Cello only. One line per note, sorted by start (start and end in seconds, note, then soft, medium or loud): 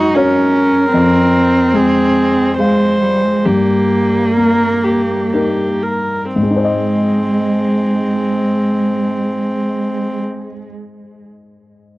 0.00 0.16 D#4 medium
0.15 0.92 C#4 medium
0.93 2.54 C4 medium
2.59 3.03 G#3 medium
3.02 3.25 G3 medium
3.23 3.47 G#3 soft
3.45 5.84 A#3 medium
6.35 10.20 G#3 soft